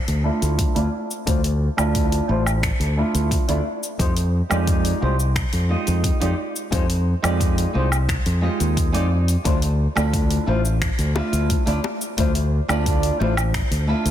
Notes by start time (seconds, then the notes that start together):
0.08 D2, open hi-hat, cabasa
0.24 A3 D4 E4 F4 E5
0.42 D2, open hi-hat, cabasa
0.59 kick, open hi-hat, cabasa
0.75 D2 A3 D4 E4 F4 D5, open hi-hat, cabasa
1.11 cabasa
1.26 D2 A3 D4 E4 F4 C5, kick, open hi-hat, cabasa
1.44 open hi-hat, cabasa
1.77 D2 A3 D4 E4 F4 D5, cabasa, low woodblock
1.95 kick, open hi-hat, cabasa
2.12 open hi-hat, cabasa
2.28 A1 A3 D4 E4 F4 C5
2.46 cabasa, low woodblock
2.63 finger snap, kick, open hi-hat, cabasa
2.80 D2, open hi-hat, cabasa
2.97 A3 D4 E4 F4 E5
3.15 D2, open hi-hat, cabasa
3.31 kick, open hi-hat, cabasa
3.48 D2 A3 D4 E4 F4 D5, open hi-hat, cabasa
3.83 cabasa
3.99 F2 G#3 D#4 F4 G4 C5, kick, open hi-hat, cabasa
4.17 open hi-hat, cabasa
4.49 F2 G#3 D#4 F4 G4 D5, cabasa, low woodblock
4.67 kick, open hi-hat, cabasa
4.85 open hi-hat, cabasa
5.00 C2 G#3 D#4 F4 G4 C5
5.20 cabasa
5.36 finger snap, kick, open hi-hat, cabasa
5.53 F2, open hi-hat, cabasa
5.69 G#3 D#4 F4 G4 D#5
5.87 F2, open hi-hat, cabasa
6.04 kick, open hi-hat, cabasa
6.20 F2 G#3 D#4 F4 G4 D5, open hi-hat, cabasa
6.56 cabasa
6.71 F2 G#3 D#4 F4 G4 C5, kick, open hi-hat, cabasa
6.90 open hi-hat, cabasa
7.22 F2 G#3 D#4 F4 G4 D5, open hi-hat, cabasa, low woodblock
7.41 kick, open hi-hat, cabasa
7.58 open hi-hat, cabasa
7.73 C2 G#3 D#4 F4 G4 C5
7.92 cabasa, low woodblock
8.09 finger snap, kick, open hi-hat, cabasa
8.26 F2, open hi-hat, cabasa
8.41 G#3 D#4 F4 G4 D#5
8.60 D#2, open hi-hat, cabasa
8.77 kick, open hi-hat, cabasa
8.92 F2 G#3 D#4 F4 G4 D5, open hi-hat, cabasa
9.28 open hi-hat, cabasa
9.44 D2 A3 D4 E4 F4 C5, kick, open hi-hat, cabasa
9.62 open hi-hat, cabasa
9.95 D2 A3 D4 E4 F4 D5, cabasa, low woodblock
10.13 kick, open hi-hat, cabasa
10.31 open hi-hat, cabasa
10.46 A1 A3 D4 E4 F4 C5
10.65 cabasa
10.82 finger snap, kick, open hi-hat, cabasa
10.99 D2, open hi-hat, cabasa
11.15 A3 D4 E4 F4 E5, high bongo
11.33 D2, open hi-hat, cabasa
11.50 kick, open hi-hat, cabasa
11.66 D2 A3 D4 E4 F4 D5, open hi-hat, cabasa
11.84 high bongo
12.01 cabasa
12.17 D2 A3 D4 E4 F4 C5, kick, open hi-hat, cabasa
12.35 open hi-hat, cabasa
12.68 D2 A3 D4 E4 F4 D5, cabasa, low woodblock
12.86 kick, open hi-hat, cabasa
13.03 open hi-hat, cabasa
13.20 A1 A3 D4 E4 F4 C5, high bongo
13.37 cabasa, low woodblock
13.54 finger snap, kick, open hi-hat, cabasa
13.71 D2, open hi-hat, cabasa
13.87 A3 D4 E4 F4 E5
14.05 D2, open hi-hat, cabasa